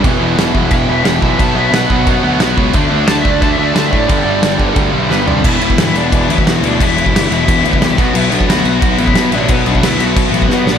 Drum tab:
CC |x---x---x---x---|x---x---x---x---|x---x---x---x---|x---x---x-------|
SD |----o-------o---|----o-------o---|----o-------o---|----o-------o---|
FT |----------------|----------------|----------------|--------------o-|
BD |o-----o-o-----o-|o-----o-o-----o-|o-----o-o-----o-|o-----o-o-------|

CC |x-x-x-x-x-x-x-x-|x-x-x-x-x-x-x-x-|x-x-x-x-x-x-x-x-|x-x-x-x-x-x-----|
SD |----o-------o---|----o-------o---|----o-------o---|----o-------o-o-|
FT |----------------|----------------|----------------|----------------|
BD |o--o----o--o----|o--o----o--o--o-|---o----o--o----|o--o----o--o----|